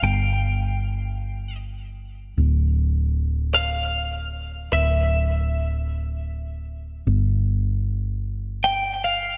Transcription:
X:1
M:6/8
L:1/8
Q:3/8=51
K:Gdor
V:1 name="Clean electric guitar"
g4 z2 | z3 f2 z | e4- e z | z4 g f |]
V:2 name="Fingered electric bass" clef=bass
G,,,6 | D,,,6 | D,,,6 | G,,,6 |]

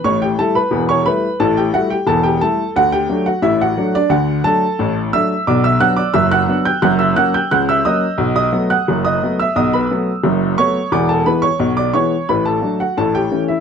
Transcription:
X:1
M:2/4
L:1/16
Q:1/4=88
K:D
V:1 name="Upright piano"
[cc'] [Gg] [Aa] [Bb]2 [cc'] [Bb]2 | [Aa] [Gg] [Ff] [Gg] [Aa] [Gg] [Aa]2 | [Ff] [Gg]2 [Ff] [Ee] [Ff]2 [Dd] | [Ff]2 [Aa]4 [ee']2 |
[dd'] [ee'] [ff'] [dd'] [ee'] [ff']2 [gg'] | [ff'] [ee'] [ff'] [gg'] [ff'] [ee'] [_e_e']2- | [_e_e'] [^d^d']2 [ff']2 [dd']2 [=e=e'] | [^d^d'] [Bb] z4 [cc']2 |
[dd'] [Aa] [Bb] [cc']2 [dd'] [cc']2 | [Bb] [Aa]2 [Ff] [Aa] [Gg]2 [Ee] |]
V:2 name="Upright piano" clef=bass
[A,,,A,,]2 [G,A,E]2 [E,,,E,,]2 [G,A,E]2 | [A,,,A,,]2 [G,A,E]2 [E,,,E,,]2 [G,A,E]2 | [D,,D,]2 [F,A,D]2 [A,,,A,,]2 [F,A,D]2 | [D,,D,]2 [F,A,D]2 [A,,,A,,]2 [F,A,D]2 |
[B,,,B,,]2 [F,B,D]2 [F,,,F,,]2 [F,B,D]2 | [F,,,F,,]2 [F,^A,C]2 [C,,C,]2 [F,A,C]2 | [B,,,B,,]2 [F,A,B,]2 [F,,,F,,]2 [F,A,B,]2 | [B,,,B,,]2 [F,A,B,]2 [F,,,F,,]2 [F,A,B,]2 |
[E,,,E,,]2 [E,^G,B,]2 [B,,,B,,]2 [E,G,B,]2 | [A,,,A,,]2 [F,A,D]2 [A,,,A,,]2 [E,A,C]2 |]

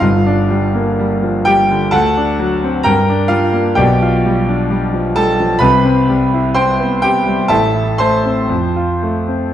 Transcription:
X:1
M:2/4
L:1/16
Q:1/4=64
K:Gphr
V:1 name="Grand piano"
[Ff]6 [Gg]2 | [=A^f=a]4 [Bgb]2 [=F=f]2 | [K:C] [Gdg]6 [Aa]2 | [Bb]4 [cgc']2 [Gg]2 |
[Aea]2 [cac']6 |]
V:2 name="Grand piano" clef=bass
[G,,,G,,] D G, B, G, F, G, D, | D,, D ^F, C G,, D G, B, | [K:C] [B,,,B,,] F G, D G, F, G, F, | [C,,C,] C G, E C B, C G, |
[A,,,A,,] E A, C F,, F A, C |]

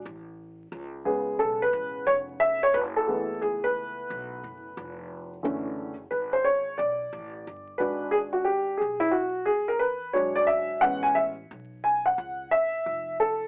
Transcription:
X:1
M:4/4
L:1/16
Q:"Swing 16ths" 1/4=89
K:A
V:1 name="Upright piano"
z6 G2 A B3 c2 e c | B A3 G B8- B2 z | z4 B =c ^c2 d6 B2 | G F =G2 ^G E F2 G _B =B2 c d e2 |
f g e2 z2 g f3 e4 A2 |]
V:2 name="Upright piano"
z6 [C,G,B,]8- [C,G,B,]2 | z2 [E,A,B,G]12- [E,A,B,G]2 | [D,E,A,C]2 z12 [G,DF]2- | [G,DF]4 z8 [F,G,D]4 |
[G,B,C]2 z12 z2 |]
V:3 name="Upright bass" clef=bass
A,,,4 C,,4 B,,,2 A,,,2 =F,,,4 | F,,,4 C,,4 B,,,2 F,,,2 =F,,,4 | F,,,4 G,,,4 B,,,2 A,,,2 =G,,,2 ^G,,,2- | G,,,4 B,,,4 D,,2 E,,2 E,,,4 |
A,,,4 B,,,4 C,,2 A,,,2 =F,,,4 |]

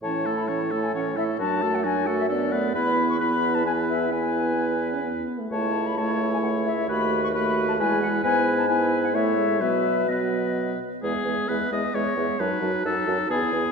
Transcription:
X:1
M:3/4
L:1/16
Q:1/4=132
K:Emix
V:1 name="Flute"
a3 b a3 g f2 e2 | a3 f g2 f e d4 | b3 c' b3 a g2 e2 | g8 z4 |
[K:E] a3 b a3 g f2 e2 | b3 c' b3 a g2 f2 | g3 a g3 f e4 | e4 d6 z2 |
e2 e2 e2 e2 e2 e2 | a2 a2 a2 a2 g2 g2 |]
V:2 name="Oboe"
c2 A2 c2 A2 c2 A2 | F2 A2 F2 A2 A2 B2 | B4 B4 B4 | B8- B2 z2 |
[K:E] c4 c8 | B4 B4 B4 | B4 B4 c4 | B4 B6 z2 |
G4 B2 d2 c4 | B4 A4 G4 |]
V:3 name="Clarinet"
C2 E2 C2 E2 C2 E2 | D2 F2 D2 F2 D2 B,2 | E4 E4 E4 | E8- E2 z2 |
[K:E] E4 E8 | F4 F4 E4 | E4 E4 E4 | B,4 B,6 z2 |
B,2 B,2 B,2 B,2 B,2 B,2 | D2 D2 D2 D2 E2 E2 |]
V:4 name="French horn"
E,2 A,2 E,2 A,2 E,2 A,2 | F,2 A,2 F,2 A,2 B,2 A,2 | B,4 B,4 B,4 | B,4 B,3 C B,3 A, |
[K:E] A,4 A,8 | A,4 A,4 G,4 | B,4 B,4 A,2 G,2 | F,4 F,6 z2 |
G,2 G,2 G,2 G,2 G,2 G,2 | F,2 F,2 F,2 F,2 B,2 B,2 |]
V:5 name="Bassoon" clef=bass
A,,12 | F,,12 | E,,12- | E,,8- E,,2 z2 |
[K:E] C,,12 | D,,8 E,,4 | G,,8 A,,4 | B,,8- B,,2 z2 |
E,,2 E,,2 E,,2 E,,2 E,,2 E,,2 | F,,2 F,,2 F,,2 F,,2 E,,2 E,,2 |]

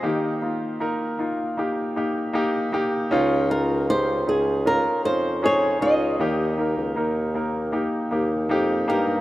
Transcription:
X:1
M:4/4
L:1/16
Q:1/4=78
K:Ebmix
V:1 name="Nylon-string guitar"
e4 z12 | z2 B2 c2 A2 B2 c2 d2 e2- | e4 z8 z2 B2 |]
V:2 name="Grand piano"
[B,EG]2 [B,EF]2 [B,EB]2 [B,EF]2 [B,EG]2 [B,EG]2 [B,EG]2 [B,EG]2 | [DEF]2 [DEF]2 [DEG]2 [DEA]2 [DEF]2 [DEF]2 [DEA]2 [DEF]2 | [B,EG]2 [B,EB]2 [B,EB]2 [B,EB]2 [B,EG]2 [B,EG]2 [B,EG]2 [B,EG]2 |]
V:3 name="Grand piano" clef=bass
E,6 z8 z2 | D,6 z8 z2 | E,6 z8 z2 |]
V:4 name="Bassoon" clef=bass
z16 | D,,6 D,,3 z F,,4 D,,2 | E,,3 D,, E,,4- E,, z E,,2 F,,2 G,,2 |]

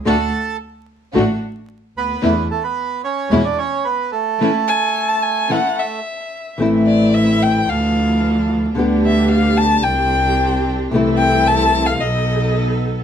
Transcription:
X:1
M:4/4
L:1/16
Q:1/4=110
K:A
V:1 name="Violin"
z16 | z16 | z2 g3 a g2 f2 e6 | [K:Am] z2 d2 e2 g2 f6 z2 |
z2 e2 f2 a2 g6 z2 | z2 g2 a3 f ^d4 z4 |]
V:2 name="Bandoneon"
[Aa]4 z8 z2 [B,B]2- | [B,B]2 [A,A] [B,B]3 [Cc]3 [Dd] [Cc]2 [B,B]2 [A,A]2- | [A,A]12 z4 | [K:Am] z16 |
z16 | z16 |]
V:3 name="String section"
[A,DF]2 z6 [A,DF]2 z6 | [A,DE]2 z6 [G,CE]2 z6 | [A,CE]2 z6 [A,CE]2 z6 | [K:Am] [A,CE]8 [E,F,D]8 |
[B,DG]8 [CDG]8 | [CEA]8 [B,^DA]8 |]
V:4 name="Nylon-string guitar"
[D,A,DF]2 z6 [D,A,DF]2 z6 | [D,A,B,E]2 z6 [B,,E,G,CE]2 z6 | [E,A,CE]2 z6 [E,A,CE]2 z6 | [K:Am] [E,A,CE]8 z8 |
[D,G,B,G]8 z8 | [C,E,A,CE]8 z8 |]
V:5 name="Double bass" clef=bass
D,,2 z6 A,,,2 z4 D,,2 | E,,2 z6 E,,2 z6 | z16 | [K:Am] A,,,8 D,,8 |
D,,8 C,,8 | C,,8 B,,,8 |]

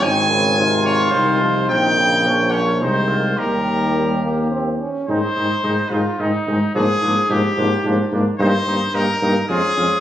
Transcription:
X:1
M:3/4
L:1/8
Q:1/4=108
K:Ab
V:1 name="Trumpet"
a3 d c2 | g3 d c2 | B4 z2 | c3 F E2 |
A2 G3 z | c2 B2 A2 |]
V:2 name="Trumpet"
A2 F4 | E2 D D E F | G4- G z | E E E E E E |
=D D D D D D | E E E E F F |]
V:3 name="French horn"
C2 E2 E2 | C2 B,2 A,2 | G,2 G, B, C D | A, A, A, A, A, A, |
B, B, B, B, B, B, | B, B, B, B, D D |]
V:4 name="Euphonium" clef=bass
E, D, C,2 E, F, | E, D, F,2 E,2 | E,4- E, z | E, E, E, E, E, E, |
F, F, F, F, F, F, | E, E, E, E, A, A, |]
V:5 name="Tuba" clef=bass
A,,,4 C,,2 | B,,,4 C,,2 | E,,4- E,, z | A,, A,, A,, A,, A,, A,, |
A,, A,, A,, A,, A,, A,, | G,, G,, G,, G,, F,, F,, |]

